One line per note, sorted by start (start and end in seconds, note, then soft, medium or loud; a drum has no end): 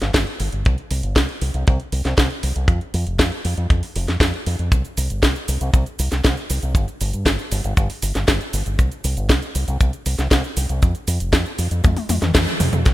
0.02 0.11 G1 medium
0.02 snare soft
0.02 closed hi-hat medium
0.14 0.24 G1 medium
0.14 kick loud
0.14 snare loud
0.14 closed hi-hat medium
0.27 closed hi-hat soft
0.40 0.49 G1 medium
0.40 open hi-hat loud
0.52 0.62 G1 medium
0.52 closed hi-hat medium
0.65 0.75 C2 loud
0.65 kick loud
0.65 closed hi-hat soft
0.78 closed hi-hat soft
0.91 1.00 C2 medium
0.91 open hi-hat loud
1.03 1.13 G1 medium
1.03 closed hi-hat medium
1.16 1.26 C2 loud
1.16 kick loud
1.16 snare loud
1.16 closed hi-hat medium
1.29 closed hi-hat soft
1.41 1.51 C2 medium
1.41 open hi-hat medium
1.54 1.64 C2 medium
1.54 closed hi-hat medium
1.67 1.77 C2 loud
1.67 kick loud
1.67 closed hi-hat medium
1.80 closed hi-hat soft
1.92 2.02 C2 medium
1.92 open hi-hat medium
2.05 2.15 C2 medium
2.05 snare soft
2.05 closed hi-hat soft
2.18 2.27 C2 medium
2.18 kick loud
2.18 snare loud
2.18 closed hi-hat soft
2.30 closed hi-hat soft
2.43 2.53 C2 medium
2.43 open hi-hat loud
2.56 2.66 C2 medium
2.56 closed hi-hat medium
2.68 2.78 F2 loud
2.68 kick loud
2.68 closed hi-hat soft
2.81 closed hi-hat soft
2.94 3.04 F2 medium
2.94 open hi-hat loud
3.07 3.16 F1 medium
3.07 closed hi-hat soft
3.19 3.29 F2 loud
3.19 kick loud
3.19 snare loud
3.19 closed hi-hat soft
3.32 closed hi-hat soft
3.45 3.55 F2 medium
3.45 open hi-hat loud
3.57 3.67 F2 medium
3.57 closed hi-hat medium
3.70 3.80 F2 medium
3.70 kick loud
3.70 closed hi-hat soft
3.83 open hi-hat medium
3.96 4.05 F1 medium
3.96 open hi-hat loud
4.08 4.18 F2 medium
4.08 snare soft
4.08 closed hi-hat soft
4.20 4.30 F2 medium
4.20 kick loud
4.20 snare loud
4.20 closed hi-hat medium
4.34 closed hi-hat soft
4.46 4.56 F2 medium
4.46 open hi-hat loud
4.59 4.69 F2 medium
4.59 closed hi-hat soft
4.72 4.82 C2 medium
4.72 kick loud
4.72 closed hi-hat soft
4.72 cabasa soft
4.85 closed hi-hat soft
4.85 cabasa soft
4.97 5.07 C2 medium
4.97 open hi-hat loud
4.97 cabasa medium
5.10 5.20 G1 medium
5.10 closed hi-hat soft
5.10 cabasa soft
5.23 5.32 C2 loud
5.23 kick medium
5.23 snare loud
5.23 closed hi-hat soft
5.23 cabasa soft
5.36 closed hi-hat soft
5.36 cabasa soft
5.48 5.58 C2 medium
5.48 open hi-hat loud
5.48 cabasa medium
5.61 5.71 C2 medium
5.61 closed hi-hat soft
5.61 cabasa soft
5.74 5.83 C2 loud
5.74 kick loud
5.74 closed hi-hat medium
5.74 cabasa soft
5.86 closed hi-hat soft
5.86 cabasa soft
5.99 6.09 C2 medium
5.99 open hi-hat loud
5.99 cabasa medium
6.12 6.22 C2 medium
6.12 snare soft
6.12 closed hi-hat medium
6.12 cabasa soft
6.24 6.34 C2 medium
6.24 kick loud
6.24 snare loud
6.24 closed hi-hat medium
6.24 cabasa soft
6.37 closed hi-hat soft
6.37 cabasa soft
6.50 6.60 C2 medium
6.50 open hi-hat loud
6.50 cabasa medium
6.63 6.72 C2 medium
6.63 closed hi-hat medium
6.63 cabasa soft
6.75 6.85 G1 loud
6.75 kick loud
6.75 closed hi-hat medium
6.75 cabasa soft
6.88 closed hi-hat soft
6.88 cabasa soft
7.01 7.11 G1 medium
7.01 open hi-hat loud
7.01 cabasa medium
7.13 7.23 G2 medium
7.13 closed hi-hat medium
7.13 cabasa soft
7.26 7.36 G1 loud
7.26 kick medium
7.26 snare loud
7.26 closed hi-hat soft
7.26 cabasa soft
7.39 closed hi-hat soft
7.39 cabasa soft
7.52 7.61 G1 medium
7.52 open hi-hat loud
7.52 cabasa medium
7.64 7.74 G1 medium
7.64 closed hi-hat medium
7.64 cabasa soft
7.77 7.87 G1 loud
7.77 kick loud
7.77 closed hi-hat medium
7.77 cabasa soft
7.90 open hi-hat medium
7.90 cabasa soft
8.02 8.12 G1 medium
8.02 open hi-hat loud
8.02 cabasa medium
8.15 8.25 G1 medium
8.15 snare soft
8.15 closed hi-hat medium
8.15 cabasa soft
8.28 8.38 G1 loud
8.28 kick loud
8.28 snare loud
8.28 closed hi-hat medium
8.28 cabasa soft
8.41 closed hi-hat soft
8.41 cabasa soft
8.53 8.63 G1 loud
8.53 open hi-hat loud
8.53 cabasa medium
8.66 8.76 G1 medium
8.66 closed hi-hat medium
8.66 cabasa soft
8.79 8.89 C2 loud
8.79 kick loud
8.79 closed hi-hat medium
8.79 cabasa soft
8.92 closed hi-hat soft
8.92 cabasa soft
9.04 9.14 C2 medium
9.04 open hi-hat loud
9.04 cabasa medium
9.17 9.27 G1 medium
9.17 closed hi-hat medium
9.17 cabasa soft
9.29 9.39 C2 loud
9.29 kick loud
9.29 snare loud
9.29 closed hi-hat medium
9.29 cabasa soft
9.42 closed hi-hat soft
9.42 cabasa soft
9.55 9.65 C2 medium
9.55 open hi-hat loud
9.55 cabasa medium
9.68 9.77 C2 medium
9.68 closed hi-hat medium
9.68 cabasa soft
9.80 9.90 C2 medium
9.80 kick loud
9.80 closed hi-hat medium
9.80 cabasa soft
9.93 closed hi-hat soft
9.93 cabasa soft
10.06 10.16 C2 medium
10.06 open hi-hat loud
10.06 cabasa medium
10.19 10.28 C2 medium
10.19 snare soft
10.19 closed hi-hat medium
10.19 cabasa soft
10.31 10.41 C2 loud
10.31 kick medium
10.31 snare loud
10.31 closed hi-hat medium
10.31 cabasa soft
10.44 closed hi-hat soft
10.44 cabasa soft
10.57 10.66 C2 medium
10.57 open hi-hat loud
10.57 cabasa medium
10.69 10.79 C2 medium
10.69 closed hi-hat medium
10.69 cabasa soft
10.82 10.92 F2 loud
10.82 kick loud
10.82 closed hi-hat medium
10.82 cabasa soft
10.95 closed hi-hat soft
10.95 cabasa soft
11.08 11.17 F2 medium
11.08 open hi-hat loud
11.08 cabasa medium
11.20 11.30 F1 medium
11.20 closed hi-hat medium
11.20 cabasa soft
11.33 11.43 F2 loud
11.33 kick loud
11.33 snare loud
11.33 closed hi-hat medium
11.33 cabasa soft
11.46 closed hi-hat soft
11.46 cabasa soft
11.58 11.68 F2 medium
11.58 open hi-hat loud
11.58 cabasa medium
11.71 11.81 F2 medium
11.71 closed hi-hat medium
11.71 cabasa soft
11.84 11.94 F2 medium
11.84 kick loud
11.84 closed hi-hat medium
11.84 high tom medium
11.84 cabasa soft
11.97 open hi-hat medium
11.97 high tom medium
11.97 cabasa soft
12.09 12.19 F2 medium
12.09 open hi-hat loud
12.09 high tom medium
12.09 cabasa medium
12.22 12.32 F2 medium
12.22 snare soft
12.22 closed hi-hat medium
12.22 mid tom medium
12.22 cabasa soft
12.35 12.44 F2 medium
12.35 kick loud
12.35 snare loud
12.35 closed hi-hat medium
12.35 mid tom medium
12.35 cabasa soft
12.47 closed hi-hat soft
12.47 cabasa soft
12.60 12.70 F2 medium
12.60 mid tom medium
12.60 open hi-hat loud
12.60 cabasa medium
12.73 12.82 F2 medium
12.73 closed hi-hat medium
12.73 mid tom medium
12.73 cabasa soft
12.86 12.94 C2 loud
12.86 kick loud
12.86 snare soft
12.86 closed hi-hat soft
12.86 cabasa soft